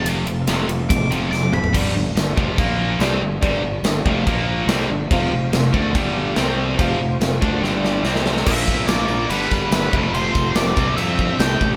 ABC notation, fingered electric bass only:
X:1
M:4/4
L:1/8
Q:1/4=143
K:Flyd
V:1 name="Fingered electric bass" clef=bass
F,,, F,,, F,,, F,,, A,,, F,,, F,,, F,,, | G,,, G,,, G,,, F,,, _B,,,2 C,, G,,, | G,,, G,,, G,,, F,,, _B,,,2 C,, G,,, | F,,, F,,, F,,, D,, G,,,2 C,,2 |
F,,, F,,, F,,, D,, G,,,2 C,,2 | _B,,, B,,, B,,, B,,, G,,, G,,, G,,, F,,, | F,,, F,,, F,,, C,, F,,2 C,, A,,, |]